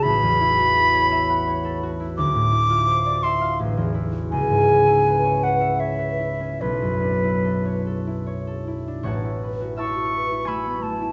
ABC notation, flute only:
X:1
M:3/4
L:1/8
Q:1/4=83
K:A
V:1 name="Flute"
b4- b z | d'3 =c' z2 | g3 f e2 | B4 z2 |
z2 c'2 b a |]